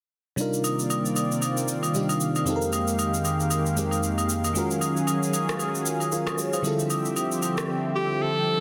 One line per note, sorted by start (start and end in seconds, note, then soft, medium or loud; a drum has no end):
0.36 1.91 C3 medium
0.36 6.60 D#3 medium
0.36 1.91 G3 medium
0.36 2.45 A#3 medium
0.36 2.45 C4 medium
0.36 1.92 D4 medium
0.36 1.92 D#4 medium
0.36 2.45 D5 medium
0.36 6.60 F5 medium
0.36 shaker medium
0.40 1.93 F4 medium
0.40 1.93 A#4 medium
0.53 shaker soft
0.64 high agogo medium
0.64 shaker medium
0.79 shaker soft
0.90 high agogo medium
0.90 shaker medium
1.06 shaker soft
1.16 high agogo medium
1.16 shaker medium
1.32 shaker soft
1.42 high agogo medium
1.42 shaker medium
1.57 shaker soft
1.68 shaker medium
1.83 high agogo medium
1.83 shaker medium
1.94 2.46 C3 medium
1.94 2.47 G3 soft
1.94 2.47 D4 soft
1.94 2.46 D#4 soft
1.94 2.48 F4 soft
1.94 2.48 G4 medium
1.94 shaker medium
2.09 high agogo medium
2.09 shaker medium
2.21 shaker medium
2.36 high agogo medium
2.36 shaker medium
2.45 3.74 F2 medium
2.45 3.74 G#3 medium
2.45 4.54 G#3 medium
2.45 4.54 A#3 medium
2.45 3.75 C4 medium
2.45 3.75 D#4 medium
2.45 4.54 G4 medium
2.45 shaker medium
2.49 3.76 G4 medium
2.49 2.56 A4 medium
2.56 3.78 A#4 medium
2.62 shaker medium
2.73 high agogo medium
2.73 shaker medium
2.88 shaker medium
2.99 high agogo medium
2.99 shaker medium
3.14 shaker soft
3.25 high agogo medium
3.25 shaker medium
3.40 shaker soft
3.50 high agogo medium
3.50 shaker medium
3.66 shaker soft
3.76 4.55 F2 medium
3.76 4.53 G#3 soft
3.76 4.56 C4 soft
3.76 4.56 D#4 soft
3.76 4.56 G4 soft
3.76 4.56 A#4 medium
3.76 shaker medium
3.91 high agogo medium
3.91 shaker medium
4.03 shaker medium
4.18 high agogo medium
4.18 shaker medium
4.29 shaker loud
4.44 high agogo medium
4.44 shaker medium
4.53 6.59 D#3 medium
4.53 6.62 F#3 medium
4.53 6.60 G#3 medium
4.53 6.60 C#4 medium
4.53 6.62 C#4 medium
4.53 6.09 F4 medium
4.53 6.10 F#4 medium
4.53 6.62 G#4 medium
4.53 shaker medium
4.58 6.10 A#4 medium
4.71 shaker medium
4.81 high agogo medium
4.81 shaker medium
4.97 shaker soft
5.07 high agogo medium
5.07 shaker medium
5.23 shaker soft
5.34 high agogo medium
5.34 shaker medium
5.49 cross-stick medium
5.49 shaker soft
5.59 high agogo medium
5.59 shaker medium
5.75 shaker soft
5.86 shaker medium
6.00 high agogo medium
6.00 shaker medium
6.12 6.37 F4 medium
6.12 6.37 A#4 medium
6.12 shaker medium
6.27 cross-stick medium
6.27 high agogo medium
6.27 shaker medium
6.38 6.53 G#4 medium
6.38 6.53 C#5 medium
6.38 shaker loud
6.53 6.79 C5 medium
6.53 6.78 F5 medium
6.53 high agogo medium
6.53 shaker medium
6.62 8.60 D3 medium
6.62 8.60 F3 medium
6.62 8.60 G3 medium
6.62 8.60 C4 medium
6.62 8.60 E4 medium
6.62 8.60 G4 medium
6.62 8.60 E5 medium
6.62 shaker medium
6.66 8.60 F4 medium
6.66 8.60 A4 medium
6.79 shaker medium
6.90 high agogo medium
6.90 shaker medium
7.05 shaker medium
7.16 high agogo medium
7.16 shaker medium
7.32 shaker soft
7.42 high agogo medium
7.42 shaker medium
7.58 cross-stick medium
7.58 shaker soft
7.96 8.23 G4 medium
8.22 8.60 A4 loud